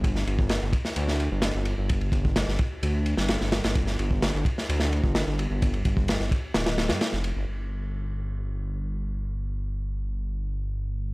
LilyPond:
<<
  \new Staff \with { instrumentName = "Detuned saw bass" } { \clef bass \time 4/4 \key c \major \tempo 4 = 129 g,,8 g,,8. g,,16 r8 d,8. g,,8 g,,8 g,,16~ | g,,8 g,,8. g,,16 r8 d,8. g,,8 g,,8 g,,16~ | g,,8 g,,8. g,,16 r8 d,8. g,,8 g,,8 g,,16~ | g,,8 g,,8. g,,16 r8 d,,8. g,16 r16 f,,8 g,,16 |
g,,1~ | g,,1 | }
  \new DrumStaff \with { instrumentName = "Drums" } \drummode { \time 4/4 <bd cymr>16 sn16 cymr16 bd16 <cymr sn>8 <bd cymr>16 sn16 cymr16 sn16 cymr8 <cymr sn>8 cymr8 | <bd cymr>16 cymr16 <bd cymr>16 bd16 <cymr sn>16 sn16 <bd cymr>8 cymr8 cymr16 sn16 <cymr sn>16 sn16 <cymr sn>16 <cymr sn>16 | <bd cymr>16 sn16 cymr16 bd16 <cymr sn>8 <bd cymr>16 sn16 cymr16 sn16 cymr16 bd16 <cymr sn>8 cymr8 | <bd cymr>16 cymr16 <bd cymr>16 bd16 <cymr sn>16 sn16 <bd cymr>8 <cymr sn>16 <cymr sn>16 <cymr sn>16 <cymr sn>16 <cymr sn>16 sn16 cymr8 |
r4 r4 r4 r4 | r4 r4 r4 r4 | }
>>